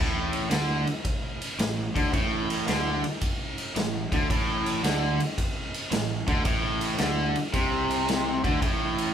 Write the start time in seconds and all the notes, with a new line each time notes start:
Already playing: A1 A2
0.33 ride
0.50 D2 D3, snare, ride
0.87 ride
1.05 kick, ride
1.42 ride
1.59 A1 A2, snare, ride
1.95 D2 D3, kick, ride
2.13 A1 A2, kick, ride
2.50 ride
2.68 D2 D3, snare, ride
3.04 ride
3.21 kick, ride
3.58 ride
3.76 A1 A2, snare, ride
4.12 D2 D3, kick, ride
4.30 A1 A2, kick, ride
4.66 ride
4.83 D2 D3, snare, ride
5.20 ride
5.38 kick, ride
5.74 ride
5.91 A1 A2, snare, ride
6.28 D2 D3, kick, ride
6.45 A1 A2, kick, ride
6.81 ride
6.98 D2 D3, snare, ride
7.36 ride
7.53 C2 C3, kick, ride
7.91 ride
8.08 snare, ride
8.44 D2 D3, kick, ride
8.62 A1 A2, kick, ride
8.98 ride